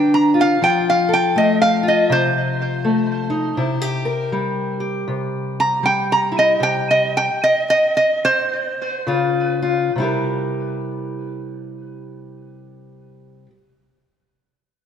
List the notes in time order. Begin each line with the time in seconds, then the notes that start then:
Already playing: D3 G3 D4 B4 G5
0.14 A#5
0.34 F4
0.41 F5
0.62 F3 F4 G5
0.90 F5
1.09 A4
1.14 G5
1.36 A3 D#5
1.62 F5
1.83 F4
1.88 D#5
2.10 C3 C5
2.85 A3
3.30 D#4
3.57 C3 E4
3.82 G4
4.05 A#4
4.32 G3
4.80 G4
5.08 C3
5.60 A#5
5.83 G3 G5
6.12 A#5
6.32 E4
6.39 D#5
6.60 C3 G4 G5
6.91 D#5
7.17 G5
7.44 D#5
7.70 D#5
7.97 D#5
8.25 C5
9.07 C#3 F4
9.62 F4
9.96 C3 G3
10.00 E4 G4
10.04 A#4